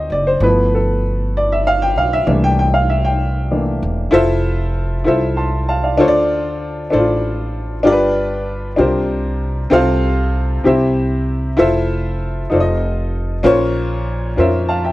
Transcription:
0.00 0.44 F#3 medium
0.00 0.44 C4 medium
0.00 0.43 D#4 medium
0.00 0.27 C5 medium
0.00 0.12 D5 medium
0.00 0.43 D#5 medium
0.00 0.43 F#5 loud
0.00 0.43 G5 medium
0.00 0.44 A5 medium
0.10 0.39 F#1 medium
0.10 0.27 D5 medium
0.27 0.42 C5 medium
0.40 1.92 G1 loud
0.40 2.23 F3 medium
0.40 2.23 A3 soft
0.40 2.24 B3 medium
0.40 2.24 E4 medium
0.40 0.74 B4 medium
0.75 1.03 A4 medium
1.37 1.52 D5 medium
1.52 1.67 E5 medium
1.67 1.82 F5 medium
1.82 1.97 G5 medium
1.96 2.24 B1 medium
1.96 2.13 F5 medium
2.13 2.44 E5 medium
2.27 3.78 C2 loud
2.27 3.16 E3 medium
2.27 3.16 A3 medium
2.27 3.16 A#3 medium
2.27 3.17 D4 medium
2.44 2.58 G5 loud
2.59 2.75 G5 medium
2.74 2.79 F5 medium
2.90 3.05 E5 medium
3.05 3.63 G5 medium
3.51 3.79 E3 soft
3.51 3.79 A3 soft
3.51 3.79 A#3 soft
3.51 3.79 D4 medium
3.82 4.11 E1 medium
4.11 5.02 F1 medium
4.11 4.94 E4 loud
4.11 4.95 F4 loud
4.11 4.95 A4 loud
4.11 4.95 C5 loud
4.11 4.96 E5 loud
5.04 6.00 C2 medium
5.04 5.88 E4 medium
5.04 5.88 F4 medium
5.04 5.89 A4 medium
5.04 5.89 C5 medium
5.04 5.38 E5 medium
5.37 5.67 A5 medium
5.37 5.66 C6 medium
5.68 5.82 F5 medium
5.68 5.83 A5 medium
5.84 6.06 D5 medium
5.84 6.13 F5 medium
5.97 6.89 D2 loud
5.97 6.88 D3 medium
5.97 6.81 D4 loud
5.97 6.81 F4 medium
5.97 6.82 A4 medium
5.97 6.82 C5 medium
5.97 6.06 C#5 loud
6.08 6.86 D5 loud
6.90 7.86 A1 medium
6.90 7.74 D4 medium
6.90 6.98 E4 medium
6.90 7.75 A4 medium
6.90 7.75 C5 medium
6.90 7.76 D5 medium
6.98 7.78 F4 medium
7.83 8.75 G1 loud
7.83 8.74 G2 medium
7.83 8.67 D4 loud
7.83 8.67 F4 medium
7.83 8.68 G4 medium
7.83 7.92 A#4 medium
7.83 8.69 D5 loud
7.92 8.71 B4 medium
8.76 9.68 C2 medium
8.76 9.68 C3 medium
8.76 9.60 D4 medium
8.76 9.60 F4 medium
8.76 9.61 G4 medium
8.76 9.61 A#4 medium
8.76 9.62 C5 medium
9.70 10.61 C2 loud
9.70 10.61 C3 medium
9.70 10.54 C4 loud
9.70 10.54 F4 loud
9.70 10.55 A4 loud
9.70 10.55 C5 loud
9.70 10.55 F5 loud
10.64 11.55 C2 medium
10.64 11.55 C3 medium
10.64 11.47 C4 medium
10.64 11.47 E4 medium
10.64 11.48 G4 medium
10.64 11.48 C5 medium
10.64 11.49 E5 medium
11.57 12.48 F1 medium
11.57 12.40 E4 medium
11.57 12.41 F4 medium
11.57 12.41 A4 medium
11.57 12.41 C5 medium
11.57 12.42 E5 loud
12.50 13.41 F1 medium
12.50 13.33 D#4 medium
12.50 13.34 F4 medium
12.50 13.35 A4 medium
12.50 13.35 C5 medium
12.50 12.59 D5 medium
12.60 13.39 D#5 medium
13.43 14.34 A#1 loud
13.43 14.34 A#2 medium
13.43 14.27 C#4 loud
13.43 14.27 F4 loud
13.43 14.28 A#4 medium
13.43 14.28 C5 loud
13.43 14.29 C#5 loud
14.36 14.92 F2 medium
14.36 14.92 C#4 medium
14.36 14.92 F4 medium
14.36 14.69 A#4 medium
14.36 14.70 C5 medium
14.36 14.70 E5 medium
14.69 14.84 F5 medium
14.69 14.92 A5 medium
14.84 14.92 E5 medium
14.84 14.92 G5 medium

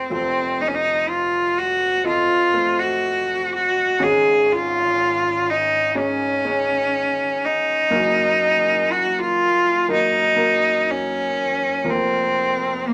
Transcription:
0.00 0.10 F3 medium
0.00 0.10 C4 soft
0.00 0.11 C4 medium
0.00 0.11 A4 soft
0.00 0.11 C5 medium
0.00 2.05 D#5 medium
0.10 3.97 F1 soft
0.10 3.97 F2 soft
0.10 1.85 F3 medium
0.10 1.85 C4 soft
0.10 0.62 C4 medium
0.10 1.85 A4 soft
0.10 1.85 C5 medium
0.61 0.69 D#4 medium
0.68 0.76 C#4 medium
0.75 1.10 D#4 medium
1.09 1.60 F4 medium
1.58 2.06 F#4 medium
2.04 2.48 F3 soft
2.04 2.48 C4 medium
2.04 2.81 F4 medium
2.04 2.49 A4 soft
2.04 2.49 D#5 medium
2.54 3.85 A3 medium
2.54 3.85 C4 soft
2.54 3.85 A4 soft
2.54 3.85 C5 medium
2.79 3.52 F#4 medium
3.54 4.05 F#4 medium
3.99 7.87 G#1 medium
3.99 7.87 G#2 soft
3.99 5.74 G#3 medium
3.99 5.74 C#4 medium
3.99 5.74 D#4 medium
3.99 5.74 C#5 medium
4.03 4.54 G#4 medium
4.53 5.52 F4 medium
5.50 5.99 D#4 medium
5.95 6.39 G#3 soft
5.95 6.39 C#4 soft
5.95 7.47 C#4 medium
5.95 6.39 D#4 medium
5.95 6.39 C#5 medium
6.45 7.76 G#3 medium
6.45 7.76 C#4 medium
6.45 7.76 D#4 soft
6.45 7.76 C#5 medium
7.45 8.93 D#4 medium
7.91 11.80 F#1 medium
7.91 11.80 F#2 soft
7.91 9.66 F#3 medium
7.91 9.66 A#3 medium
7.91 9.66 D#4 medium
7.91 9.66 A#4 medium
8.92 9.20 F#4 medium
9.19 9.90 F4 medium
9.88 10.32 F#3 medium
9.88 10.32 A#3 soft
9.88 10.32 D#4 soft
9.88 10.32 A#4 medium
9.93 10.92 D#4 medium
10.36 11.68 F#3 medium
10.36 11.68 A#3 soft
10.36 11.68 D#4 soft
10.36 11.68 A#4 medium
10.91 11.92 C#4 medium
11.84 12.94 F1 soft
11.84 12.94 F2 medium
11.84 12.94 F3 medium
11.84 12.94 A#3 medium
11.84 12.94 C4 medium
11.84 12.94 A#4 medium
11.90 12.88 C4 medium
12.87 12.94 A#3 medium

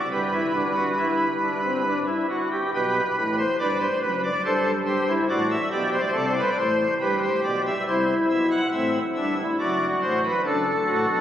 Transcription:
0.12 2.00 G1 medium
0.12 1.99 G2 medium
0.12 0.31 G4 medium
0.12 1.99 B4 medium
0.33 0.52 E4 medium
0.54 0.73 D4 medium
0.76 0.95 F#4 medium
0.98 1.25 E4 medium
1.42 1.61 D4 medium
1.64 1.83 C4 medium
1.87 2.06 D4 medium
2.07 2.26 E4 medium
2.30 2.49 F#4 medium
2.51 2.70 G4 medium
2.74 3.01 B1 medium
2.74 3.00 B2 medium
2.74 3.01 G4 medium
2.74 3.15 B4 medium
3.17 3.44 A1 medium
3.17 3.44 A2 medium
3.17 3.35 B4 medium
3.38 3.56 C5 medium
3.59 3.86 G1 medium
3.59 3.86 G2 medium
3.59 3.86 B4 medium
3.59 3.78 D5 medium
3.80 3.99 C5 medium
4.03 4.29 F#1 medium
4.03 4.29 F#2 medium
4.03 4.21 B4 medium
4.24 4.42 D5 medium
4.45 5.18 G1 medium
4.45 5.18 G2 medium
4.45 4.72 A4 medium
4.45 4.71 C5 medium
4.86 5.05 G4 loud
4.86 5.13 C5 medium
5.08 5.27 E4 medium
5.29 5.55 A1 medium
5.29 5.56 A2 medium
5.29 5.56 F#4 loud
5.29 5.47 D5 medium
5.50 5.69 E5 medium
5.71 5.98 B1 medium
5.71 5.98 B2 medium
5.71 5.98 G4 loud
5.71 5.90 D5 medium
5.93 6.01 C5 medium
6.01 6.09 D5 medium
6.07 6.16 C5 medium
6.11 6.40 C2 loud
6.11 6.39 C3 medium
6.11 6.32 A4 loud
6.17 6.25 D5 medium
6.26 6.34 C5 medium
6.33 6.41 D5 medium
6.38 6.55 B4 loud
6.42 6.49 C5 medium
6.49 6.57 D5 medium
6.58 6.84 A1 medium
6.58 6.84 A2 medium
6.58 6.95 C5 loud
7.00 7.27 G1 medium
7.00 7.27 G2 medium
7.00 7.74 G4 loud
7.00 7.19 B4 medium
7.22 7.41 C5 medium
7.43 7.70 B1 medium
7.43 7.70 B2 medium
7.43 7.62 D5 medium
7.67 7.84 E5 medium
7.87 8.14 C2 medium
7.87 8.14 C3 medium
7.87 8.61 E4 medium
7.87 8.14 C5 medium
8.30 8.56 B1 medium
8.30 8.56 B2 medium
8.30 8.48 E5 medium
8.51 8.69 F#5 medium
8.72 8.99 A1 medium
8.72 8.99 A2 medium
8.72 8.99 C4 medium
8.72 8.99 E5 medium
9.15 9.42 G1 medium
9.15 9.42 G2 medium
9.15 9.34 D4 medium
9.15 9.42 E5 medium
9.38 9.56 E4 medium
9.59 9.86 F#1 medium
9.59 9.86 F#2 medium
9.59 10.32 F#4 medium
9.59 9.86 D5 medium
10.02 10.28 A1 medium
10.02 10.28 A2 medium
10.02 10.20 C5 medium
10.24 10.41 B4 medium
10.45 10.71 F#1 medium
10.45 10.71 F#2 medium
10.45 10.71 D4 medium
10.45 11.21 A4 medium
10.87 11.05 A1 medium
10.87 11.05 A2 medium
10.87 11.21 F#4 medium
11.08 11.21 B1 medium
11.08 11.21 B2 medium

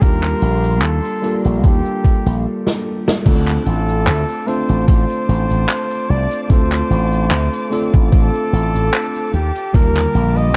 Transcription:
0.00 0.33 D#2 loud
0.00 1.18 G3 medium
0.00 1.18 A#3 medium
0.00 1.19 D4 medium
0.00 1.19 F4 medium
0.00 2.41 G4 medium
0.00 1.20 G4 medium
0.00 1.25 A4 loud
0.00 0.84 A#4 loud
0.00 2.41 F5 medium
0.00 2.41 A5 medium
0.00 2.42 C6 medium
0.00 kick loud
0.00 closed hi-hat medium
0.00 cabasa medium
0.23 clap soft
0.23 closed hi-hat soft
0.23 cabasa soft
0.42 0.83 A#1 loud
0.42 closed hi-hat medium
0.64 closed hi-hat medium
0.64 cabasa medium
0.82 0.99 D#2 loud
0.82 1.38 A4 loud
0.82 clap loud
0.82 closed hi-hat medium
0.82 cabasa medium
1.04 closed hi-hat medium
1.04 cabasa medium
1.22 2.44 G3 medium
1.22 2.45 A#3 medium
1.22 2.45 D4 medium
1.22 2.45 F4 medium
1.22 2.46 A4 loud
1.22 closed hi-hat medium
1.44 1.64 A#1 medium
1.44 closed hi-hat medium
1.44 cabasa medium
1.64 1.80 D#2 medium
1.64 2.41 G4 medium
1.64 kick loud
1.64 closed hi-hat medium
1.64 cabasa medium
1.85 cabasa soft
2.04 kick loud
2.04 closed hi-hat medium
2.26 2.45 A#1 medium
2.26 closed hi-hat medium
2.26 cabasa medium
2.67 snare medium
3.08 snare loud
3.24 3.57 D2 loud
3.24 4.42 A3 medium
3.24 4.43 C4 medium
3.24 4.43 D4 medium
3.24 4.44 F4 medium
3.24 4.44 A4 medium
3.24 9.30 C5 medium
3.24 10.57 F5 medium
3.24 10.57 A5 medium
3.24 10.57 D6 medium
3.24 kick loud
3.24 closed hi-hat loud
3.24 crash loud
3.24 cabasa medium
3.48 clap soft
3.48 closed hi-hat medium
3.48 cabasa soft
3.66 4.07 A1 loud
3.66 4.49 A4 loud
3.66 closed hi-hat medium
3.88 closed hi-hat soft
3.88 cabasa medium
4.07 4.23 D2 loud
4.07 clap loud
4.07 closed hi-hat loud
4.07 cabasa medium
4.29 closed hi-hat medium
4.29 cabasa medium
4.46 6.45 A3 medium
4.46 6.46 C4 medium
4.46 6.46 D4 medium
4.46 6.46 F4 medium
4.46 6.47 A4 loud
4.46 4.88 C5 loud
4.46 closed hi-hat medium
4.69 4.83 A1 medium
4.69 closed hi-hat medium
4.69 cabasa medium
4.88 5.04 A1 loud
4.88 6.12 C5 loud
4.88 kick loud
4.88 closed hi-hat loud
4.88 cabasa medium
5.10 closed hi-hat medium
5.10 cabasa soft
5.29 5.45 A1 loud
5.29 closed hi-hat medium
5.50 5.65 A1 medium
5.50 closed hi-hat medium
5.50 cabasa medium
5.69 clap loud
5.69 closed hi-hat loud
5.69 cabasa medium
5.91 closed hi-hat medium
5.91 cabasa medium
6.10 6.26 C2 medium
6.10 6.43 D5 loud
6.10 closed hi-hat medium
6.31 closed hi-hat medium
6.31 cabasa medium
6.44 6.52 D5 medium
6.49 6.81 D2 loud
6.49 7.67 A3 medium
6.49 7.67 C4 medium
6.49 7.67 D4 medium
6.49 7.68 F4 medium
6.49 7.68 A4 medium
6.49 7.87 C5 loud
6.49 kick loud
6.49 closed hi-hat medium
6.49 cabasa medium
6.72 clap soft
6.72 closed hi-hat medium
6.72 cabasa soft
6.91 7.31 A1 loud
6.91 closed hi-hat medium
7.12 closed hi-hat medium
7.12 cabasa medium
7.31 7.48 D2 loud
7.31 clap loud
7.31 closed hi-hat medium
7.31 cabasa medium
7.53 closed hi-hat medium
7.53 cabasa soft
7.70 9.31 A3 medium
7.70 9.31 C4 medium
7.70 9.32 D4 medium
7.70 9.32 F4 medium
7.70 9.32 A4 loud
7.70 closed hi-hat medium
7.93 8.08 A1 medium
7.93 kick loud
7.93 closed hi-hat medium
7.93 cabasa medium
8.12 8.29 A1 loud
8.12 9.30 A4 loud
8.12 kick loud
8.12 closed hi-hat loud
8.12 cabasa medium
8.34 closed hi-hat medium
8.34 cabasa soft
8.53 8.69 A1 medium
8.53 closed hi-hat medium
8.75 8.89 A1 medium
8.75 closed hi-hat medium
8.75 cabasa medium
8.93 clap loud
8.93 closed hi-hat medium
8.93 cabasa medium
9.15 closed hi-hat medium
9.15 cabasa soft
9.34 9.50 D#2 medium
9.34 10.57 G4 medium
9.34 9.76 G4 loud
9.34 closed hi-hat medium
9.56 closed hi-hat medium
9.56 cabasa medium
9.73 10.06 D#2 loud
9.73 10.57 D3 medium
9.73 10.57 G3 medium
9.73 10.57 A#3 medium
9.73 10.57 F4 medium
9.73 10.39 A#4 loud
9.73 10.57 A#4 medium
9.73 kick loud
9.73 closed hi-hat medium
9.73 cabasa medium
9.96 clap soft
9.96 closed hi-hat medium
9.96 cabasa soft
10.15 10.55 A#1 loud
10.15 closed hi-hat medium
10.36 10.57 D#5 loud
10.36 closed hi-hat medium
10.36 cabasa medium

